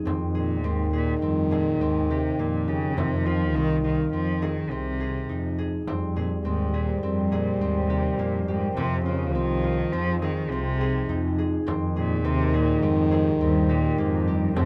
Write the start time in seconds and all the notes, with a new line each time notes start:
Already playing: D#4 F4 G#4
0.05 F2 D#3 C4, frame drum
0.35 A#2 G#4
0.64 D#2 G#2 C4
0.93 A#2 G#4
1.22 F2 G2 C4, frame drum
1.51 A#2 G#4, frame drum
1.80 D#2 G#2 C4
2.10 C3 G4
2.39 F2 A#2 A#3, frame drum
2.68 C#3 G4, frame drum
2.96 F2 C3 D#3 C4, frame drum
3.26 F3 F4
3.55 C2 D#3 C4
3.84 D#3 F4
4.13 F2 F3 C4
4.42 D#3 G#4, frame drum
4.71 C2 C3 C4
5.00 G#4
5.29 F2 D#4, frame drum
5.58 G#4, frame drum
5.86 F2 F3 G3 C4 D#4 G4 A#4 C5, frame drum
6.16 A#2 G#4
6.45 D#2 G#2 C4
6.74 A#2 G#4
6.97 G#2
7.02 F2 G2 C4, frame drum
7.31 A#2 G#4, frame drum
7.61 D#2 G#2 C4
7.89 C3 G4
8.18 F2 A#2 A#3, frame drum
8.48 G#2 G4
8.76 F2 C3 F3 C4 G#4, frame drum
9.05 C#3 F4
9.33 C2 D#3 C4
9.64 F4
9.92 F2 F3 C4, frame drum
10.22 D#3 G#4, frame drum
10.50 C2 C3 C4
10.81 G#4
11.09 F2 D#4, frame drum
11.38 G#4, frame drum
11.67 F2 D#3 C4 G4 A#4 C5, frame drum
11.96 A#2 G#4
12.24 D#2 C3 C4
12.54 A#2 G#4
12.82 F2 G#2 C4, frame drum
13.11 G#4, frame drum
13.39 D#2 G2 C4
13.69 A#2 G4
13.98 F2 G#2 A#3, frame drum
14.27 G2 G4, frame drum
14.55 F2 C3 C4, frame drum